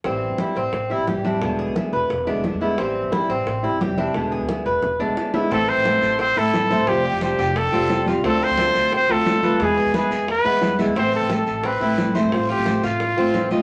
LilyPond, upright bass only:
\new Staff \with { instrumentName = "Upright bass" } { \clef bass \time 4/4 \key a \minor \tempo 4 = 176 a,,8. g,,8. a,,8 a,,8. a,,8 a,,8. | e,,8. d,8. e,,8 e,,8. e,,8 e,8. | a,,8. g,,8. a,,8 a,,8. a,,8 f,,8. | e,,8. d,8. e,,8 e,,8. e,,16 r4 |
a,,8. a,,8. a,,4 a,,4~ a,,16 a,,16 | f,,8. f,,8. f,,4 f,,4~ f,,16 cis,16 | d,8. d,8. d,4 d,4~ d,16 d,16 | e,8. e,8. e,4 e,4~ e,16 e,16 |
a,,8. a,,8. a,,4 a,,4~ a,,16 a,,16 | a,,8. a,,8. a,,4 a,,4~ a,,16 r16 | }